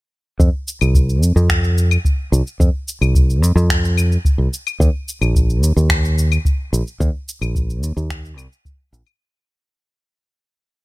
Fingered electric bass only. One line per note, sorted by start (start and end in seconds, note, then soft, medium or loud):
0.40 0.48 F2 medium
0.81 1.22 C2 medium
1.22 1.31 F2 medium
1.36 1.96 F2 medium
2.32 2.41 C2 medium
2.60 2.68 F2 loud
3.01 3.42 C2 medium
3.42 3.51 F2 medium
3.56 4.16 F2 medium
4.38 4.47 C2 medium
4.80 4.89 D#2 loud
5.21 5.63 A#1 medium
5.63 5.71 D#2 medium
5.76 6.37 D#2 medium
6.73 6.81 A#1 medium
7.00 7.09 D#2 loud
7.41 7.83 A#1 medium
7.83 7.91 D#2 medium
7.97 8.37 D#2 medium
8.37 8.46 C2 loud
8.93 9.01 A#1 loud